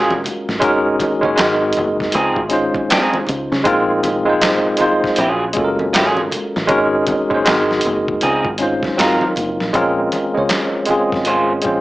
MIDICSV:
0, 0, Header, 1, 6, 480
1, 0, Start_track
1, 0, Tempo, 759494
1, 392, Time_signature, 4, 2, 24, 8
1, 7463, End_track
2, 0, Start_track
2, 0, Title_t, "Tine electric piano"
2, 0, Program_c, 0, 4
2, 0, Control_c, 0, 64, 127
2, 0, Note_on_c, 0, 56, 83
2, 0, Note_on_c, 0, 61, 74
2, 0, Note_on_c, 0, 65, 77
2, 0, Note_on_c, 0, 66, 76
2, 0, Note_on_c, 0, 70, 88
2, 350, Note_off_c, 0, 56, 0
2, 353, Note_off_c, 0, 61, 0
2, 358, Note_off_c, 0, 65, 0
2, 361, Note_off_c, 0, 66, 0
2, 362, Note_off_c, 0, 70, 0
2, 378, Note_on_c, 0, 56, 106
2, 385, Note_on_c, 0, 61, 97
2, 391, Note_on_c, 0, 63, 98
2, 401, Control_c, 0, 64, 0
2, 401, Note_on_c, 0, 66, 105
2, 405, Note_on_c, 0, 70, 117
2, 499, Control_c, 0, 64, 127
2, 745, Note_off_c, 0, 56, 0
2, 749, Note_off_c, 0, 61, 0
2, 751, Note_off_c, 0, 63, 0
2, 756, Note_off_c, 0, 66, 0
2, 759, Note_off_c, 0, 70, 0
2, 766, Note_on_c, 0, 56, 80
2, 772, Note_on_c, 0, 61, 76
2, 778, Note_on_c, 0, 63, 76
2, 786, Note_on_c, 0, 66, 78
2, 793, Note_on_c, 0, 73, 92
2, 848, Note_off_c, 0, 56, 0
2, 856, Note_on_c, 0, 56, 79
2, 860, Note_off_c, 0, 63, 0
2, 863, Note_on_c, 0, 60, 71
2, 867, Note_on_c, 0, 63, 78
2, 868, Note_off_c, 0, 61, 0
2, 869, Note_off_c, 0, 66, 0
2, 876, Note_on_c, 0, 66, 73
2, 878, Note_off_c, 0, 73, 0
2, 880, Control_c, 0, 64, 0
2, 884, Note_on_c, 0, 70, 84
2, 984, Control_c, 0, 64, 127
2, 1321, Note_off_c, 0, 56, 0
2, 1324, Note_off_c, 0, 60, 0
2, 1326, Note_off_c, 0, 63, 0
2, 1331, Note_off_c, 0, 66, 0
2, 1335, Note_off_c, 0, 70, 0
2, 1361, Control_c, 0, 64, 0
2, 1477, Control_c, 0, 64, 127
2, 1574, Note_on_c, 0, 56, 84
2, 1581, Note_on_c, 0, 61, 72
2, 1588, Note_on_c, 0, 63, 77
2, 1593, Note_on_c, 0, 65, 76
2, 1599, Note_on_c, 0, 72, 92
2, 2268, Note_off_c, 0, 56, 0
2, 2271, Note_off_c, 0, 61, 0
2, 2275, Note_off_c, 0, 63, 0
2, 2277, Note_off_c, 0, 65, 0
2, 2280, Note_off_c, 0, 72, 0
2, 2299, Note_on_c, 0, 56, 105
2, 2308, Note_on_c, 0, 60, 106
2, 2312, Note_on_c, 0, 63, 102
2, 2317, Note_on_c, 0, 65, 103
2, 2321, Control_c, 0, 64, 0
2, 2325, Note_on_c, 0, 70, 120
2, 2424, Control_c, 0, 64, 127
2, 2665, Note_off_c, 0, 56, 0
2, 2670, Note_off_c, 0, 60, 0
2, 2672, Note_off_c, 0, 63, 0
2, 2674, Note_off_c, 0, 65, 0
2, 2679, Note_off_c, 0, 70, 0
2, 2688, Note_on_c, 0, 56, 89
2, 2691, Note_on_c, 0, 60, 78
2, 2702, Note_on_c, 0, 63, 77
2, 2704, Note_on_c, 0, 65, 74
2, 2712, Note_on_c, 0, 72, 95
2, 3008, Note_off_c, 0, 56, 0
2, 3009, Note_off_c, 0, 60, 0
2, 3015, Note_off_c, 0, 63, 0
2, 3016, Note_off_c, 0, 65, 0
2, 3020, Note_off_c, 0, 72, 0
2, 3021, Note_on_c, 0, 56, 80
2, 3023, Note_on_c, 0, 60, 72
2, 3031, Note_on_c, 0, 63, 73
2, 3036, Note_on_c, 0, 65, 72
2, 3043, Note_on_c, 0, 72, 87
2, 3266, Note_off_c, 0, 56, 0
2, 3268, Note_off_c, 0, 60, 0
2, 3272, Note_off_c, 0, 63, 0
2, 3274, Note_off_c, 0, 65, 0
2, 3278, Note_off_c, 0, 72, 0
2, 3281, Control_c, 0, 64, 0
2, 3396, Control_c, 0, 64, 127
2, 3496, Note_on_c, 0, 56, 83
2, 3506, Note_on_c, 0, 61, 76
2, 3516, Note_on_c, 0, 65, 73
2, 3520, Note_on_c, 0, 66, 72
2, 3529, Note_on_c, 0, 69, 71
2, 3566, Note_on_c, 0, 70, 88
2, 3571, Note_off_c, 0, 69, 0
2, 4189, Note_off_c, 0, 56, 0
2, 4194, Note_off_c, 0, 61, 0
2, 4198, Note_off_c, 0, 65, 0
2, 4201, Note_off_c, 0, 66, 0
2, 4215, Note_on_c, 0, 56, 108
2, 4222, Note_on_c, 0, 61, 98
2, 4224, Note_off_c, 0, 70, 0
2, 4228, Note_on_c, 0, 63, 99
2, 4238, Note_on_c, 0, 66, 103
2, 4241, Control_c, 0, 64, 0
2, 4243, Note_on_c, 0, 70, 118
2, 4336, Control_c, 0, 64, 127
2, 4583, Note_off_c, 0, 56, 0
2, 4587, Note_off_c, 0, 61, 0
2, 4590, Note_off_c, 0, 63, 0
2, 4595, Note_off_c, 0, 66, 0
2, 4597, Note_off_c, 0, 70, 0
2, 4612, Note_on_c, 0, 56, 82
2, 4618, Note_on_c, 0, 61, 76
2, 4626, Note_on_c, 0, 63, 73
2, 4629, Note_on_c, 0, 66, 75
2, 4640, Note_on_c, 0, 72, 95
2, 4701, Note_off_c, 0, 56, 0
2, 4708, Note_on_c, 0, 56, 80
2, 4711, Note_off_c, 0, 61, 0
2, 4715, Note_off_c, 0, 63, 0
2, 4716, Note_off_c, 0, 66, 0
2, 4718, Note_on_c, 0, 60, 73
2, 4719, Control_c, 0, 64, 0
2, 4722, Note_off_c, 0, 72, 0
2, 4723, Note_on_c, 0, 63, 73
2, 4729, Note_on_c, 0, 66, 76
2, 4738, Note_on_c, 0, 70, 94
2, 4833, Control_c, 0, 64, 127
2, 5167, Note_off_c, 0, 56, 0
2, 5172, Note_off_c, 0, 60, 0
2, 5174, Note_off_c, 0, 63, 0
2, 5177, Note_off_c, 0, 66, 0
2, 5181, Note_off_c, 0, 70, 0
2, 5201, Control_c, 0, 64, 0
2, 5304, Control_c, 0, 64, 127
2, 5422, Note_on_c, 0, 56, 75
2, 5430, Note_on_c, 0, 61, 72
2, 5437, Note_on_c, 0, 63, 73
2, 5445, Note_on_c, 0, 65, 77
2, 5452, Note_on_c, 0, 72, 90
2, 5666, Note_on_c, 0, 54, 81
2, 5667, Note_off_c, 0, 56, 0
2, 5671, Note_off_c, 0, 61, 0
2, 5671, Note_on_c, 0, 60, 78
2, 5675, Note_off_c, 0, 63, 0
2, 5678, Note_off_c, 0, 65, 0
2, 5679, Control_c, 0, 64, 0
2, 5682, Note_off_c, 0, 72, 0
2, 5682, Note_on_c, 0, 63, 77
2, 5687, Note_on_c, 0, 65, 74
2, 5693, Note_on_c, 0, 68, 76
2, 5734, Note_off_c, 0, 68, 0
2, 5737, Note_on_c, 0, 70, 96
2, 5779, Control_c, 0, 64, 127
2, 6125, Note_off_c, 0, 54, 0
2, 6128, Note_off_c, 0, 60, 0
2, 6134, Note_off_c, 0, 63, 0
2, 6136, Note_off_c, 0, 65, 0
2, 6150, Note_on_c, 0, 56, 102
2, 6158, Note_on_c, 0, 60, 86
2, 6161, Note_off_c, 0, 70, 0
2, 6161, Control_c, 0, 64, 0
2, 6163, Note_on_c, 0, 61, 87
2, 6167, Note_on_c, 0, 65, 88
2, 6174, Note_on_c, 0, 70, 103
2, 6264, Control_c, 0, 64, 127
2, 6511, Note_off_c, 0, 56, 0
2, 6515, Note_off_c, 0, 60, 0
2, 6517, Note_off_c, 0, 61, 0
2, 6519, Note_off_c, 0, 65, 0
2, 6523, Note_off_c, 0, 70, 0
2, 6536, Note_on_c, 0, 56, 68
2, 6544, Note_on_c, 0, 72, 61
2, 6551, Note_on_c, 0, 61, 62
2, 6558, Note_on_c, 0, 65, 61
2, 6563, Note_on_c, 0, 73, 76
2, 6852, Note_off_c, 0, 56, 0
2, 6856, Note_off_c, 0, 72, 0
2, 6860, Note_off_c, 0, 61, 0
2, 6863, Note_off_c, 0, 65, 0
2, 6865, Note_off_c, 0, 73, 0
2, 6865, Note_on_c, 0, 56, 78
2, 6872, Note_on_c, 0, 60, 69
2, 6878, Note_on_c, 0, 61, 69
2, 6886, Note_on_c, 0, 65, 71
2, 6892, Note_on_c, 0, 68, 89
2, 7325, Note_off_c, 0, 56, 0
2, 7328, Note_off_c, 0, 60, 0
2, 7332, Note_off_c, 0, 61, 0
2, 7335, Note_off_c, 0, 65, 0
2, 7338, Note_off_c, 0, 68, 0
2, 7344, Note_on_c, 0, 56, 72
2, 7353, Note_on_c, 0, 60, 67
2, 7357, Note_on_c, 0, 61, 69
2, 7365, Note_on_c, 0, 65, 69
2, 7372, Note_on_c, 0, 72, 81
2, 7463, Note_off_c, 0, 56, 0
2, 7463, Note_off_c, 0, 60, 0
2, 7463, Note_off_c, 0, 61, 0
2, 7463, Note_off_c, 0, 65, 0
2, 7463, Note_off_c, 0, 72, 0
2, 7463, End_track
3, 0, Start_track
3, 0, Title_t, "Clean electric guitar"
3, 0, Program_c, 1, 27
3, 0, Note_on_c, 1, 54, 84
3, 0, Note_on_c, 1, 61, 94
3, 0, Note_on_c, 1, 65, 89
3, 0, Note_on_c, 1, 68, 101
3, 75, Note_off_c, 1, 54, 0
3, 76, Note_off_c, 1, 61, 0
3, 78, Note_off_c, 1, 65, 0
3, 80, Note_off_c, 1, 68, 0
3, 1355, Note_on_c, 1, 53, 79
3, 1360, Note_on_c, 1, 60, 85
3, 1362, Note_on_c, 1, 68, 76
3, 1363, Note_on_c, 1, 63, 75
3, 1515, Note_off_c, 1, 53, 0
3, 1517, Note_off_c, 1, 60, 0
3, 1518, Note_off_c, 1, 68, 0
3, 1519, Note_off_c, 1, 63, 0
3, 1835, Note_on_c, 1, 52, 78
3, 1840, Note_on_c, 1, 60, 84
3, 1841, Note_on_c, 1, 63, 95
3, 1843, Note_on_c, 1, 68, 89
3, 1904, Note_off_c, 1, 52, 0
3, 1904, Note_on_c, 1, 53, 78
3, 1995, Note_off_c, 1, 53, 0
3, 1997, Note_off_c, 1, 60, 0
3, 1998, Note_off_c, 1, 63, 0
3, 1999, Note_off_c, 1, 68, 0
3, 3273, Note_on_c, 1, 53, 79
3, 3279, Note_on_c, 1, 61, 84
3, 3279, Note_on_c, 1, 65, 90
3, 3282, Note_on_c, 1, 68, 87
3, 3343, Note_off_c, 1, 53, 0
3, 3343, Note_on_c, 1, 54, 79
3, 3434, Note_off_c, 1, 54, 0
3, 3437, Note_off_c, 1, 61, 0
3, 3437, Note_off_c, 1, 65, 0
3, 3438, Note_off_c, 1, 68, 0
3, 3750, Note_on_c, 1, 53, 80
3, 3758, Note_on_c, 1, 60, 80
3, 3763, Note_on_c, 1, 65, 78
3, 3765, Note_on_c, 1, 68, 89
3, 3819, Note_off_c, 1, 53, 0
3, 3819, Note_on_c, 1, 54, 80
3, 3827, Note_off_c, 1, 60, 0
3, 3827, Note_on_c, 1, 61, 80
3, 3912, Note_off_c, 1, 54, 0
3, 3916, Note_off_c, 1, 61, 0
3, 3919, Note_off_c, 1, 65, 0
3, 3920, Note_off_c, 1, 68, 0
3, 5198, Note_on_c, 1, 53, 82
3, 5202, Note_on_c, 1, 60, 80
3, 5202, Note_on_c, 1, 68, 92
3, 5203, Note_on_c, 1, 63, 90
3, 5356, Note_off_c, 1, 53, 0
3, 5358, Note_off_c, 1, 60, 0
3, 5358, Note_off_c, 1, 68, 0
3, 5359, Note_off_c, 1, 63, 0
3, 5677, Note_on_c, 1, 54, 74
3, 5683, Note_on_c, 1, 60, 87
3, 5689, Note_on_c, 1, 65, 89
3, 5690, Note_on_c, 1, 70, 86
3, 5836, Note_off_c, 1, 54, 0
3, 5839, Note_off_c, 1, 60, 0
3, 5842, Note_off_c, 1, 65, 0
3, 5842, Note_off_c, 1, 70, 0
3, 7120, Note_on_c, 1, 56, 70
3, 7125, Note_on_c, 1, 61, 66
3, 7126, Note_on_c, 1, 65, 79
3, 7128, Note_on_c, 1, 72, 77
3, 7277, Note_off_c, 1, 56, 0
3, 7280, Note_off_c, 1, 61, 0
3, 7281, Note_off_c, 1, 65, 0
3, 7281, Note_off_c, 1, 72, 0
3, 7463, End_track
4, 0, Start_track
4, 0, Title_t, "Fingered electric bass"
4, 0, Program_c, 2, 33
4, 0, Note_on_c, 2, 34, 87
4, 132, Note_off_c, 2, 34, 0
4, 308, Note_on_c, 2, 33, 91
4, 398, Note_off_c, 2, 33, 0
4, 398, Note_on_c, 2, 32, 100
4, 613, Note_off_c, 2, 32, 0
4, 785, Note_on_c, 2, 30, 85
4, 866, Note_off_c, 2, 30, 0
4, 883, Note_on_c, 2, 32, 93
4, 1096, Note_off_c, 2, 32, 0
4, 1122, Note_on_c, 2, 30, 84
4, 1335, Note_off_c, 2, 30, 0
4, 1356, Note_on_c, 2, 37, 105
4, 1499, Note_off_c, 2, 37, 0
4, 1499, Note_on_c, 2, 32, 85
4, 1717, Note_off_c, 2, 32, 0
4, 2080, Note_on_c, 2, 37, 89
4, 2211, Note_off_c, 2, 37, 0
4, 2223, Note_on_c, 2, 49, 96
4, 2305, Note_off_c, 2, 49, 0
4, 2316, Note_on_c, 2, 34, 106
4, 3157, Note_off_c, 2, 34, 0
4, 3276, Note_on_c, 2, 34, 104
4, 3492, Note_off_c, 2, 34, 0
4, 3523, Note_on_c, 2, 30, 78
4, 3763, Note_off_c, 2, 30, 0
4, 3763, Note_on_c, 2, 32, 84
4, 3976, Note_off_c, 2, 32, 0
4, 4149, Note_on_c, 2, 33, 92
4, 4228, Note_off_c, 2, 33, 0
4, 4237, Note_on_c, 2, 32, 94
4, 4453, Note_off_c, 2, 32, 0
4, 4623, Note_on_c, 2, 30, 73
4, 4705, Note_off_c, 2, 30, 0
4, 4725, Note_on_c, 2, 32, 94
4, 4937, Note_off_c, 2, 32, 0
4, 4965, Note_on_c, 2, 30, 85
4, 5177, Note_off_c, 2, 30, 0
4, 5204, Note_on_c, 2, 37, 103
4, 5334, Note_off_c, 2, 37, 0
4, 5342, Note_on_c, 2, 32, 85
4, 5559, Note_off_c, 2, 32, 0
4, 5686, Note_on_c, 2, 32, 95
4, 5815, Note_off_c, 2, 32, 0
4, 5923, Note_on_c, 2, 30, 84
4, 6053, Note_off_c, 2, 30, 0
4, 6073, Note_on_c, 2, 34, 87
4, 6150, Note_off_c, 2, 34, 0
4, 6161, Note_on_c, 2, 34, 95
4, 6374, Note_off_c, 2, 34, 0
4, 6556, Note_on_c, 2, 37, 78
4, 6632, Note_off_c, 2, 37, 0
4, 7034, Note_on_c, 2, 32, 72
4, 7334, Note_off_c, 2, 32, 0
4, 7367, Note_on_c, 2, 34, 80
4, 7463, Note_off_c, 2, 34, 0
4, 7463, End_track
5, 0, Start_track
5, 0, Title_t, "Muted fingered electric bass strokes"
5, 6886, Note_on_c, 9, 29, 41
5, 6950, Note_off_c, 9, 29, 0
5, 7463, End_track
6, 0, Start_track
6, 0, Title_t, "Drums"
6, 66, Note_on_c, 9, 63, 70
6, 129, Note_off_c, 9, 63, 0
6, 153, Note_on_c, 9, 64, 66
6, 163, Note_on_c, 9, 42, 63
6, 216, Note_off_c, 9, 64, 0
6, 226, Note_off_c, 9, 42, 0
6, 308, Note_on_c, 9, 38, 35
6, 372, Note_off_c, 9, 38, 0
6, 391, Note_on_c, 9, 36, 112
6, 391, Note_on_c, 9, 42, 67
6, 454, Note_off_c, 9, 42, 0
6, 455, Note_off_c, 9, 36, 0
6, 629, Note_on_c, 9, 36, 81
6, 632, Note_on_c, 9, 42, 63
6, 639, Note_on_c, 9, 62, 38
6, 639, Note_on_c, 9, 63, 88
6, 693, Note_off_c, 9, 36, 0
6, 695, Note_off_c, 9, 42, 0
6, 702, Note_off_c, 9, 62, 0
6, 702, Note_off_c, 9, 63, 0
6, 778, Note_on_c, 9, 36, 82
6, 842, Note_off_c, 9, 36, 0
6, 870, Note_on_c, 9, 42, 78
6, 870, Note_on_c, 9, 62, 29
6, 870, Note_on_c, 9, 63, 67
6, 876, Note_on_c, 9, 39, 94
6, 880, Note_on_c, 9, 38, 121
6, 933, Note_off_c, 9, 42, 0
6, 933, Note_off_c, 9, 62, 0
6, 933, Note_off_c, 9, 63, 0
6, 940, Note_off_c, 9, 39, 0
6, 943, Note_off_c, 9, 38, 0
6, 1091, Note_on_c, 9, 42, 74
6, 1118, Note_on_c, 9, 62, 31
6, 1118, Note_on_c, 9, 63, 69
6, 1118, Note_on_c, 9, 64, 67
6, 1154, Note_off_c, 9, 42, 0
6, 1181, Note_off_c, 9, 62, 0
6, 1181, Note_off_c, 9, 63, 0
6, 1181, Note_off_c, 9, 64, 0
6, 1265, Note_on_c, 9, 36, 95
6, 1275, Note_on_c, 9, 38, 38
6, 1329, Note_off_c, 9, 36, 0
6, 1338, Note_off_c, 9, 38, 0
6, 1341, Note_on_c, 9, 42, 78
6, 1404, Note_off_c, 9, 42, 0
6, 1494, Note_on_c, 9, 36, 82
6, 1557, Note_off_c, 9, 36, 0
6, 1578, Note_on_c, 9, 42, 66
6, 1589, Note_on_c, 9, 62, 36
6, 1641, Note_off_c, 9, 42, 0
6, 1652, Note_off_c, 9, 62, 0
6, 1735, Note_on_c, 9, 36, 96
6, 1742, Note_on_c, 9, 63, 64
6, 1798, Note_off_c, 9, 36, 0
6, 1805, Note_off_c, 9, 63, 0
6, 1834, Note_on_c, 9, 42, 85
6, 1836, Note_on_c, 9, 62, 26
6, 1842, Note_on_c, 9, 39, 94
6, 1846, Note_on_c, 9, 38, 118
6, 1898, Note_off_c, 9, 42, 0
6, 1899, Note_off_c, 9, 62, 0
6, 1905, Note_off_c, 9, 39, 0
6, 1909, Note_off_c, 9, 38, 0
6, 1982, Note_on_c, 9, 63, 73
6, 2045, Note_off_c, 9, 63, 0
6, 2064, Note_on_c, 9, 62, 30
6, 2064, Note_on_c, 9, 64, 65
6, 2077, Note_on_c, 9, 42, 59
6, 2128, Note_off_c, 9, 62, 0
6, 2128, Note_off_c, 9, 64, 0
6, 2141, Note_off_c, 9, 42, 0
6, 2227, Note_on_c, 9, 38, 34
6, 2290, Note_off_c, 9, 38, 0
6, 2309, Note_on_c, 9, 42, 70
6, 2310, Note_on_c, 9, 36, 111
6, 2372, Note_off_c, 9, 42, 0
6, 2373, Note_off_c, 9, 36, 0
6, 2549, Note_on_c, 9, 62, 38
6, 2549, Note_on_c, 9, 63, 83
6, 2552, Note_on_c, 9, 42, 62
6, 2612, Note_off_c, 9, 62, 0
6, 2612, Note_off_c, 9, 63, 0
6, 2615, Note_off_c, 9, 42, 0
6, 2788, Note_on_c, 9, 63, 67
6, 2790, Note_on_c, 9, 42, 82
6, 2796, Note_on_c, 9, 39, 98
6, 2800, Note_on_c, 9, 38, 113
6, 2852, Note_off_c, 9, 63, 0
6, 2853, Note_off_c, 9, 42, 0
6, 2860, Note_off_c, 9, 39, 0
6, 2863, Note_off_c, 9, 38, 0
6, 3014, Note_on_c, 9, 42, 73
6, 3035, Note_on_c, 9, 62, 32
6, 3035, Note_on_c, 9, 63, 68
6, 3035, Note_on_c, 9, 64, 65
6, 3077, Note_off_c, 9, 42, 0
6, 3099, Note_off_c, 9, 62, 0
6, 3099, Note_off_c, 9, 63, 0
6, 3099, Note_off_c, 9, 64, 0
6, 3185, Note_on_c, 9, 36, 101
6, 3193, Note_on_c, 9, 38, 38
6, 3248, Note_off_c, 9, 36, 0
6, 3256, Note_off_c, 9, 38, 0
6, 3262, Note_on_c, 9, 42, 78
6, 3325, Note_off_c, 9, 42, 0
6, 3496, Note_on_c, 9, 42, 66
6, 3506, Note_on_c, 9, 62, 34
6, 3519, Note_on_c, 9, 36, 96
6, 3559, Note_off_c, 9, 42, 0
6, 3569, Note_off_c, 9, 62, 0
6, 3582, Note_off_c, 9, 36, 0
6, 3660, Note_on_c, 9, 63, 65
6, 3723, Note_off_c, 9, 63, 0
6, 3750, Note_on_c, 9, 62, 25
6, 3754, Note_on_c, 9, 42, 84
6, 3762, Note_on_c, 9, 39, 96
6, 3765, Note_on_c, 9, 38, 111
6, 3814, Note_off_c, 9, 62, 0
6, 3817, Note_off_c, 9, 42, 0
6, 3825, Note_off_c, 9, 39, 0
6, 3828, Note_off_c, 9, 38, 0
6, 3898, Note_on_c, 9, 63, 73
6, 3961, Note_off_c, 9, 63, 0
6, 3991, Note_on_c, 9, 64, 70
6, 3996, Note_on_c, 9, 42, 61
6, 4054, Note_off_c, 9, 64, 0
6, 4059, Note_off_c, 9, 42, 0
6, 4146, Note_on_c, 9, 38, 33
6, 4209, Note_off_c, 9, 38, 0
6, 4226, Note_on_c, 9, 42, 66
6, 4230, Note_on_c, 9, 36, 112
6, 4231, Note_on_c, 9, 62, 32
6, 4289, Note_off_c, 9, 42, 0
6, 4293, Note_off_c, 9, 36, 0
6, 4294, Note_off_c, 9, 62, 0
6, 4466, Note_on_c, 9, 42, 67
6, 4468, Note_on_c, 9, 36, 82
6, 4474, Note_on_c, 9, 62, 38
6, 4474, Note_on_c, 9, 63, 85
6, 4529, Note_off_c, 9, 42, 0
6, 4531, Note_off_c, 9, 36, 0
6, 4537, Note_off_c, 9, 62, 0
6, 4537, Note_off_c, 9, 63, 0
6, 4619, Note_on_c, 9, 36, 76
6, 4682, Note_off_c, 9, 36, 0
6, 4713, Note_on_c, 9, 42, 80
6, 4716, Note_on_c, 9, 62, 30
6, 4716, Note_on_c, 9, 63, 62
6, 4719, Note_on_c, 9, 39, 89
6, 4723, Note_on_c, 9, 38, 112
6, 4776, Note_off_c, 9, 42, 0
6, 4779, Note_off_c, 9, 62, 0
6, 4779, Note_off_c, 9, 63, 0
6, 4782, Note_off_c, 9, 39, 0
6, 4786, Note_off_c, 9, 38, 0
6, 4872, Note_on_c, 9, 38, 35
6, 4935, Note_off_c, 9, 38, 0
6, 4936, Note_on_c, 9, 42, 76
6, 4961, Note_on_c, 9, 62, 30
6, 4961, Note_on_c, 9, 63, 66
6, 4961, Note_on_c, 9, 64, 65
6, 4999, Note_off_c, 9, 42, 0
6, 5025, Note_off_c, 9, 62, 0
6, 5025, Note_off_c, 9, 63, 0
6, 5025, Note_off_c, 9, 64, 0
6, 5108, Note_on_c, 9, 36, 98
6, 5172, Note_off_c, 9, 36, 0
6, 5189, Note_on_c, 9, 42, 78
6, 5252, Note_off_c, 9, 42, 0
6, 5338, Note_on_c, 9, 36, 87
6, 5401, Note_off_c, 9, 36, 0
6, 5422, Note_on_c, 9, 42, 62
6, 5436, Note_on_c, 9, 62, 34
6, 5485, Note_off_c, 9, 42, 0
6, 5500, Note_off_c, 9, 62, 0
6, 5579, Note_on_c, 9, 36, 88
6, 5588, Note_on_c, 9, 63, 65
6, 5593, Note_on_c, 9, 38, 36
6, 5642, Note_off_c, 9, 36, 0
6, 5651, Note_off_c, 9, 63, 0
6, 5657, Note_off_c, 9, 38, 0
6, 5682, Note_on_c, 9, 42, 80
6, 5689, Note_on_c, 9, 39, 85
6, 5693, Note_on_c, 9, 38, 116
6, 5745, Note_off_c, 9, 42, 0
6, 5753, Note_off_c, 9, 39, 0
6, 5756, Note_off_c, 9, 38, 0
6, 5821, Note_on_c, 9, 63, 69
6, 5885, Note_off_c, 9, 63, 0
6, 5915, Note_on_c, 9, 62, 30
6, 5915, Note_on_c, 9, 64, 68
6, 5922, Note_on_c, 9, 42, 64
6, 5979, Note_off_c, 9, 62, 0
6, 5979, Note_off_c, 9, 64, 0
6, 5985, Note_off_c, 9, 42, 0
6, 6070, Note_on_c, 9, 38, 35
6, 6133, Note_off_c, 9, 38, 0
6, 6155, Note_on_c, 9, 36, 92
6, 6156, Note_on_c, 9, 42, 60
6, 6218, Note_off_c, 9, 36, 0
6, 6219, Note_off_c, 9, 42, 0
6, 6396, Note_on_c, 9, 42, 60
6, 6400, Note_on_c, 9, 62, 35
6, 6400, Note_on_c, 9, 63, 74
6, 6459, Note_off_c, 9, 42, 0
6, 6463, Note_off_c, 9, 62, 0
6, 6463, Note_off_c, 9, 63, 0
6, 6631, Note_on_c, 9, 42, 70
6, 6634, Note_on_c, 9, 62, 25
6, 6634, Note_on_c, 9, 63, 58
6, 6637, Note_on_c, 9, 39, 85
6, 6641, Note_on_c, 9, 38, 105
6, 6694, Note_off_c, 9, 42, 0
6, 6697, Note_off_c, 9, 62, 0
6, 6697, Note_off_c, 9, 63, 0
6, 6701, Note_off_c, 9, 39, 0
6, 6704, Note_off_c, 9, 38, 0
6, 6860, Note_on_c, 9, 42, 69
6, 6879, Note_on_c, 9, 63, 61
6, 6879, Note_on_c, 9, 64, 59
6, 6924, Note_off_c, 9, 42, 0
6, 6943, Note_off_c, 9, 63, 0
6, 6943, Note_off_c, 9, 64, 0
6, 7030, Note_on_c, 9, 36, 88
6, 7041, Note_on_c, 9, 38, 33
6, 7093, Note_off_c, 9, 36, 0
6, 7104, Note_off_c, 9, 38, 0
6, 7109, Note_on_c, 9, 42, 70
6, 7172, Note_off_c, 9, 42, 0
6, 7342, Note_on_c, 9, 42, 59
6, 7349, Note_on_c, 9, 62, 29
6, 7363, Note_on_c, 9, 36, 82
6, 7405, Note_off_c, 9, 42, 0
6, 7412, Note_off_c, 9, 62, 0
6, 7426, Note_off_c, 9, 36, 0
6, 7463, End_track
0, 0, End_of_file